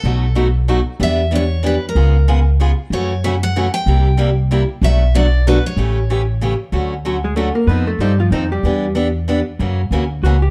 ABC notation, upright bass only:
X:1
M:3/4
L:1/8
Q:"Swing" 1/4=188
K:D
V:1 name="Upright bass" clef=bass
B,,,6 | E,,6 | C,,6 | F,,6 |
=C,,6 | B,,,6 | A,,,6 | D,,6 |
=F,,2 G,,2 F,,2 | E,,6 | F,,2 D,,2 C,,2 |]